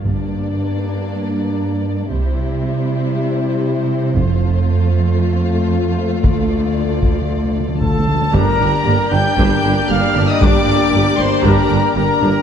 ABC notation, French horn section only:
X:1
M:4/4
L:1/8
Q:1/4=116
K:Gdor
V:1 name="French horn section"
[B,D]8 | [G,E]8 | [A,F]8- | [A,F]6- [A,F] z |
[K:Gm] [B,D]8- | [B,D]8 |]